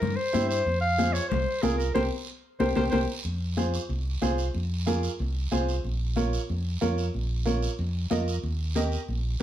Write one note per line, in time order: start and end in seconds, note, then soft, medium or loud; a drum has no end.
0.00 0.15 G2 loud
0.00 0.18 A#4 loud
0.00 high conga soft
0.00 low conga medium
0.00 long guiro medium
0.16 0.48 C5 loud
0.33 0.60 G2 medium
0.33 0.56 E4 medium
0.33 0.56 G4 medium
0.33 0.57 C5 medium
0.33 high conga medium
0.33 short guiro medium
0.48 0.79 C5 loud
0.48 short guiro medium
0.66 1.18 F2 medium
0.66 high conga soft
0.66 long guiro medium
0.81 1.14 F5 loud
0.98 1.21 F4 medium
0.98 1.21 G#4 medium
0.98 1.21 C5 medium
0.98 high conga medium
0.98 short guiro medium
1.13 1.28 C#5 loud
1.13 short guiro medium
1.29 1.44 C2 loud
1.29 1.63 C5 medium
1.29 high conga soft
1.29 low conga medium
1.29 long guiro medium
1.62 1.89 C2 medium
1.62 1.86 F4 medium
1.62 1.77 G#4 medium
1.62 1.86 G#4 medium
1.62 1.86 A#4 medium
1.62 high conga medium
1.62 short guiro medium
1.78 1.94 A#4 medium
1.78 short guiro medium
1.94 2.08 C2 medium
1.94 2.06 G4 loud
1.94 2.06 A#4 medium
1.94 2.02 C5 loud
1.94 2.06 C5 loud
1.94 high conga loud
1.94 long guiro medium
2.60 2.73 C2 loud
2.60 2.71 G4 loud
2.60 2.71 A#4 medium
2.60 2.68 C5 medium
2.60 2.71 C5 medium
2.60 high conga medium
2.60 long guiro loud
2.76 2.89 C2 medium
2.76 2.86 G4 medium
2.76 2.87 A#4 medium
2.76 2.86 C5 medium
2.76 2.84 C5 loud
2.76 high conga medium
2.76 long guiro medium
2.91 3.05 C2 medium
2.91 3.03 G4 medium
2.91 3.03 A#4 loud
2.91 2.99 C5 loud
2.91 3.03 C5 loud
2.91 high conga medium
2.91 long guiro medium
3.25 3.77 F2 medium
3.25 high conga soft
3.25 long guiro medium
3.57 3.80 F4 medium
3.57 3.80 G#4 medium
3.57 3.80 C5 medium
3.57 high conga medium
3.57 short guiro medium
3.74 short guiro medium
3.89 4.16 C2 medium
3.89 high conga soft
3.89 long guiro medium
4.22 4.48 C2 medium
4.22 4.45 F4 medium
4.22 4.45 G#4 medium
4.22 4.45 C5 medium
4.22 high conga medium
4.22 short guiro medium
4.38 short guiro medium
4.54 5.07 F2 medium
4.54 high conga soft
4.54 long guiro medium
4.86 5.09 F4 medium
4.86 5.10 G#4 medium
4.86 5.10 A#4 medium
4.86 high conga medium
4.86 short guiro medium
5.03 short guiro medium
5.19 5.46 C2 loud
5.19 high conga soft
5.19 long guiro medium
5.51 5.78 C2 medium
5.51 5.74 F4 medium
5.51 5.74 G#4 medium
5.51 5.75 C5 medium
5.51 high conga medium
5.51 short guiro medium
5.69 short guiro medium
5.84 6.37 A#1 medium
5.84 high conga soft
5.84 long guiro medium
6.16 6.39 F4 medium
6.16 6.39 A#4 medium
6.16 6.39 C#5 medium
6.16 high conga medium
6.16 short guiro medium
6.33 short guiro medium
6.50 6.76 F2 medium
6.50 high conga soft
6.50 long guiro medium
6.81 7.08 F2 medium
6.81 7.04 F4 medium
6.81 7.04 A#4 medium
6.81 7.04 C#5 medium
6.81 high conga medium
6.81 short guiro medium
6.98 short guiro medium
7.14 7.66 A#1 medium
7.14 high conga soft
7.14 long guiro medium
7.46 7.69 F4 medium
7.46 7.69 A#4 medium
7.46 7.69 C#5 medium
7.46 high conga medium
7.46 short guiro medium
7.63 short guiro medium
7.79 8.05 F2 loud
7.79 high conga soft
7.79 long guiro medium
8.10 8.37 F2 medium
8.10 8.34 F4 medium
8.10 8.34 A#4 medium
8.10 8.34 D#5 medium
8.10 high conga medium
8.10 short guiro medium
8.28 short guiro medium
8.43 8.95 D#2 medium
8.43 high conga soft
8.43 long guiro medium
8.75 8.98 G4 medium
8.75 8.99 A#4 medium
8.75 8.99 D#5 medium
8.75 high conga medium
8.75 short guiro medium
8.92 short guiro medium
9.08 9.35 A#1 medium
9.08 high conga soft
9.08 long guiro medium